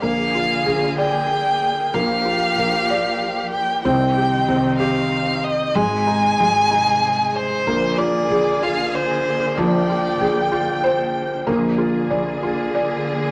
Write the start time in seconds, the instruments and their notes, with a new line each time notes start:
0.02 fretless electric bass A#1, string section D3 A#3 G#4, felt piano A#3, violin F5
0.35 felt piano F4
0.66 fretless electric bass A#1, felt piano G#4
0.98 felt piano D5, violin G5
1.93 fretless electric bass A#1, string section F3 G4, felt piano A#3, violin F5
2.25 felt piano F4
2.58 fretless electric bass A#1, felt piano A#4
2.90 felt piano D5
3.51 violin G5
3.83 fretless electric bass C2, string section D#3 C4 D#4, felt piano C4, violin G5
4.16 felt piano G4
4.48 fretless electric bass C2, felt piano C4
4.79 felt piano G4, violin F5
5.44 violin D#5
5.75 fretless electric bass G#1, string section C3 G#3 G#4, felt piano G#3, violin G#5
6.07 felt piano D#4
6.40 fretless electric bass G#1, felt piano G#3
6.71 felt piano D#4
7.35 violin C5
7.66 fretless electric bass A#1, string section D3 A#3 G#4, felt piano A#3
7.98 felt piano F4, violin D5
8.30 fretless electric bass A#1, felt piano G#4
8.63 felt piano F4, violin F5
8.94 violin C5
9.58 fretless electric bass A#1, felt piano F3, violin D5, string section G5
9.89 felt piano F4
10.20 fretless electric bass A#1, felt piano G#4
10.52 felt piano F4
10.84 felt piano C5
11.47 fretless electric bass A#1, string section D3 A#3 G#4, felt piano A#3
11.78 felt piano F4
12.10 fretless electric bass A#1, felt piano D5
12.43 felt piano F4
12.75 felt piano D5